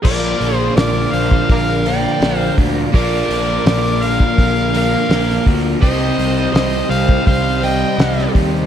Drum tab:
CC |x---------------|----------------|----------------|
HH |--o-o-o-o-o-o-o-|o-o-o-o-o-o-o-o-|o-o-o-o-o-o-o-o-|
SD |----o-------o---|----o-------oo--|----o-------oo--|
BD |o------oo-----o-|o------oo-----o-|o------oo-----o-|